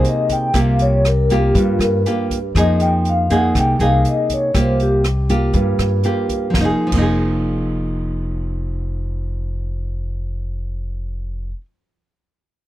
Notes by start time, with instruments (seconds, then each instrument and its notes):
Already playing: nylon-string guitar C3 A#3 D#4 G#4
0.05 vibraphone D#5, closed hi-hat
0.29 vibraphone G5, kick, closed hi-hat
0.54 upright bass C2, nylon-string guitar C3 A#3 F4 G4, kick, cross-stick, closed hi-hat
0.58 vibraphone F5
0.79 vibraphone C#5, closed hi-hat
1.05 vibraphone A#4, cross-stick, closed hi-hat
1.30 nylon-string guitar A#3 F4 G4, vibraphone G4, kick, closed hi-hat
1.55 upright bass G2, nylon-string guitar G2, vibraphone F4, kick, closed hi-hat
1.79 upright bass G2, vibraphone A#4, cross-stick, closed hi-hat
2.06 nylon-string guitar A#3 F4 G4, closed hi-hat
2.30 kick, closed hi-hat
2.55 upright bass F2, nylon-string guitar F3 A#3 D#4 G#4, vibraphone D#5, kick, cross-stick, closed hi-hat
2.80 vibraphone G5, closed hi-hat
3.05 closed hi-hat
3.09 vibraphone F5
3.30 nylon-string guitar A#3 D#4 G#4, vibraphone F#5, kick, closed hi-hat
3.55 upright bass C2, nylon-string guitar C3, kick, cross-stick, closed hi-hat
3.59 vibraphone G5
3.79 upright bass C2, nylon-string guitar A#3 D#4 G#4, vibraphone F5, closed hi-hat
4.05 vibraphone D#5, closed hi-hat
4.30 vibraphone C#5, kick, closed hi-hat
4.54 upright bass C2, nylon-string guitar C3 A#3 F4 G4, kick, cross-stick, closed hi-hat
4.59 vibraphone C5
4.80 vibraphone G4, closed hi-hat
5.04 cross-stick, closed hi-hat
5.29 nylon-string guitar A#3 F4 G4, kick, closed hi-hat
5.53 nylon-string guitar G2, upright bass G2, kick, closed hi-hat
5.79 upright bass G2, cross-stick, closed hi-hat
6.04 nylon-string guitar A#3 F4 G4, closed hi-hat
6.29 kick, closed hi-hat
6.50 nylon-string guitar F3, snare
6.54 upright bass F1, nylon-string guitar A#3, kick
6.61 nylon-string guitar D#4
6.65 nylon-string guitar G#4
6.87 nylon-string guitar F3
6.92 upright bass F1, nylon-string guitar A#3, kick, crash
6.97 nylon-string guitar D#4 G#4